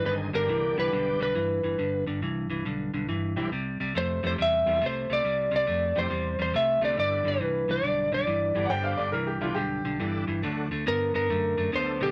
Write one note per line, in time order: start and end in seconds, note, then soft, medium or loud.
0.04 0.30 G1 medium
0.04 0.30 G2 medium
0.04 0.31 D3 medium
0.04 0.30 D#3 medium
0.04 0.30 G#3 medium
0.04 0.30 C4 medium
0.04 0.30 D#4 medium
0.04 0.30 G#4 medium
0.04 0.14 B4 medium
0.33 0.46 G1 medium
0.33 0.47 G2 medium
0.33 1.26 D3 medium
0.33 0.47 D3 medium
0.33 1.26 G3 medium
0.33 1.26 B3 medium
0.33 1.26 D4 medium
0.33 1.26 G4 medium
0.33 0.79 A#4 medium
0.48 0.73 C2 medium
0.48 0.74 G2 medium
0.48 0.74 E3 medium
0.77 0.90 C2 medium
0.77 0.90 G2 medium
0.77 0.91 E3 medium
0.77 1.21 B4 medium
0.92 1.17 B1 medium
0.92 1.17 G2 medium
0.92 1.17 D3 medium
1.20 1.33 B1 medium
1.20 1.34 G2 medium
1.20 1.34 D3 medium
1.20 2.04 B4 medium
1.35 1.60 G1 medium
1.35 1.60 G2 medium
1.35 1.60 E3 medium
1.64 1.77 G1 medium
1.64 1.77 G2 medium
1.64 1.77 E3 medium
1.78 2.03 G1 medium
1.78 2.03 G2 medium
1.78 2.04 D3 medium
2.06 2.20 G1 medium
2.06 2.20 G2 medium
2.06 2.21 D3 medium
2.22 2.46 C2 medium
2.22 2.47 G2 medium
2.22 2.47 E3 medium
2.49 2.63 C2 medium
2.49 2.63 G2 medium
2.49 2.64 E3 medium
2.65 2.90 B1 medium
2.65 2.90 G2 medium
2.65 2.91 D3 medium
2.94 3.07 B1 medium
2.94 3.07 G2 medium
2.94 3.07 D3 medium
3.08 3.33 G1 medium
3.08 3.34 G2 medium
3.08 3.34 E3 medium
3.36 3.49 B1 medium
3.36 3.50 G2 medium
3.36 3.50 E3 medium
3.36 3.50 G3 medium
3.36 3.50 C4 medium
3.36 3.50 E4 medium
3.36 3.50 G4 medium
3.51 3.76 C2 medium
3.51 3.77 C3 medium
3.51 3.77 G3 medium
3.80 3.93 C2 medium
3.80 3.94 C3 medium
3.80 3.94 G3 medium
3.94 4.19 F2 medium
3.94 4.20 C3 medium
3.94 4.20 A3 medium
3.94 4.25 C5 medium
4.22 4.36 F2 medium
4.22 4.37 C3 medium
4.22 4.37 E3 medium
4.22 4.37 G3 medium
4.22 4.37 A3 medium
4.22 4.37 C4 medium
4.22 4.37 E4 medium
4.22 4.37 G4 medium
4.27 4.32 C5 medium
4.38 4.63 E2 medium
4.38 4.63 C3 medium
4.38 4.63 G3 medium
4.42 4.85 E5 loud
4.65 4.79 E2 medium
4.65 4.80 C3 medium
4.65 4.79 E3 medium
4.65 4.79 G3 medium
4.65 4.80 G3 medium
4.65 4.80 C4 medium
4.65 4.80 E4 medium
4.65 4.80 A4 medium
4.81 5.06 C2 medium
4.81 5.06 C3 medium
4.81 5.07 A3 medium
4.86 5.12 C5 medium
5.09 5.23 C2 medium
5.09 5.23 C3 medium
5.09 5.23 A3 medium
5.09 5.55 D5 medium
5.24 5.49 C2 medium
5.24 5.50 C3 medium
5.24 5.50 G3 medium
5.51 5.66 C2 medium
5.51 5.66 C3 medium
5.51 5.66 G3 medium
5.56 5.99 D5 loud
5.67 5.92 F2 medium
5.67 5.92 C3 medium
5.67 5.93 A3 medium
5.95 6.09 F2 medium
5.95 6.09 C3 medium
5.95 6.09 E3 medium
5.95 6.09 G3 medium
5.95 6.10 A3 medium
5.95 6.09 C4 medium
5.95 6.09 E4 medium
5.95 6.09 G4 medium
5.95 6.41 C5 medium
6.10 6.35 E2 medium
6.10 6.36 C3 medium
6.10 6.36 G3 medium
6.38 6.52 E2 medium
6.38 6.52 C3 medium
6.38 6.53 G3 medium
6.38 6.55 C5 medium
6.53 6.78 C2 medium
6.53 6.79 C3 medium
6.53 6.79 A3 medium
6.53 6.84 E5 medium
6.81 6.95 C2 medium
6.81 6.96 C3 medium
6.81 7.37 D3 medium
6.81 7.38 G3 medium
6.81 6.96 A3 medium
6.81 7.38 B3 medium
6.81 7.38 D4 medium
6.81 7.38 E4 medium
6.81 6.98 D5 medium
6.97 7.22 G1 medium
6.97 7.22 G2 medium
6.97 7.23 D3 medium
6.97 7.27 D5 medium
7.25 7.39 G1 medium
7.25 7.39 G2 medium
7.25 7.39 D3 medium
7.25 7.71 B4 medium
7.39 7.65 C2 medium
7.39 7.66 G2 medium
7.39 7.66 E3 medium
7.68 7.82 C2 medium
7.68 7.82 G2 medium
7.68 7.83 E3 medium
7.68 8.13 D5 medium
7.83 8.08 B1 medium
7.83 8.09 G2 medium
7.83 8.09 D3 medium
8.11 8.25 B1 medium
8.11 8.26 G2 medium
8.11 8.26 D3 medium
8.11 8.72 D5 medium
8.27 8.52 G1 medium
8.27 8.52 G2 medium
8.27 8.52 E3 medium
8.54 8.68 G1 medium
8.54 8.69 G2 medium
8.54 9.10 D3 medium
8.54 8.69 E3 medium
8.54 9.10 G3 medium
8.54 9.10 B3 medium
8.54 9.10 D4 medium
8.54 9.10 G4 medium
8.65 8.69 F#5 medium
8.70 8.95 G1 medium
8.70 8.95 G2 medium
8.70 8.96 D3 medium
8.70 8.95 C5 medium
8.70 8.84 G5 loud
8.83 8.98 F5 medium
8.97 9.11 G1 medium
8.97 9.12 G2 medium
8.97 9.12 D3 medium
8.97 9.12 D5 medium
9.12 9.38 C2 medium
9.12 9.39 G2 medium
9.12 9.39 E3 medium
9.12 9.27 A#4 medium
9.27 9.41 G4 medium
9.40 9.55 C2 medium
9.40 9.55 G2 medium
9.40 9.54 D3 medium
9.40 9.55 E3 medium
9.40 9.55 G3 medium
9.40 9.55 B3 medium
9.40 9.55 D4 medium
9.40 9.56 F4 medium
9.40 9.55 G4 medium
9.55 9.81 B1 medium
9.55 9.81 G2 medium
9.55 9.82 D3 medium
9.55 10.39 G4 medium
9.84 9.98 B1 medium
9.84 9.98 G2 medium
9.84 9.99 D3 medium
9.99 10.24 G1 medium
9.99 10.25 G2 medium
9.99 10.24 D3 medium
9.99 10.25 E3 medium
9.99 10.25 G3 medium
9.99 10.25 B3 medium
9.99 10.25 D4 medium
9.99 10.25 A4 medium
10.27 10.41 G1 medium
10.27 10.41 G2 medium
10.27 10.42 E3 medium
10.42 10.68 D2 medium
10.42 10.68 D3 medium
10.42 10.68 F#3 medium
10.42 10.68 A3 medium
10.42 10.68 D4 medium
10.42 10.68 F#4 medium
10.71 10.84 D2 medium
10.71 10.85 D3 medium
10.71 10.85 A3 medium
10.86 11.11 G2 medium
10.86 11.11 D3 medium
10.86 11.12 B3 medium
10.86 11.14 A#4 medium
11.14 11.28 G2 medium
11.14 11.28 D3 medium
11.14 11.28 B3 medium
11.14 11.69 A#4 medium
11.29 11.54 F#2 medium
11.29 11.55 D3 medium
11.29 11.55 A3 medium
11.57 11.71 F#2 medium
11.57 11.71 D3 medium
11.57 11.71 A3 medium
11.72 11.97 D2 medium
11.72 11.98 D3 medium
11.72 12.11 D3 medium
11.72 12.11 F#3 medium
11.72 12.11 A3 medium
11.72 11.98 B3 medium
11.72 12.11 D4 medium
11.72 12.11 A4 medium
11.72 12.03 C5 medium
12.00 12.11 B1 medium
12.00 12.11 D3 medium
12.00 12.11 B3 medium
12.00 12.11 G4 loud